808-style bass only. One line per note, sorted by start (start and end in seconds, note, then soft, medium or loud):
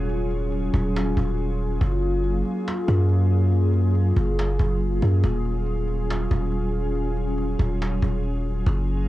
0.00 0.70 D#1 loud
0.74 1.15 D#1 loud
1.17 1.78 D#1 loud
1.81 2.43 F#1 loud
2.88 4.13 F#2 loud
4.17 4.58 F#1 loud
4.59 5.01 F#1 loud
5.02 5.23 F#2 loud
5.24 6.27 D#1 loud
6.31 7.55 D#1 loud
7.59 8.01 D#1 loud
8.02 8.64 D#1 loud
8.67 9.08 F#1 loud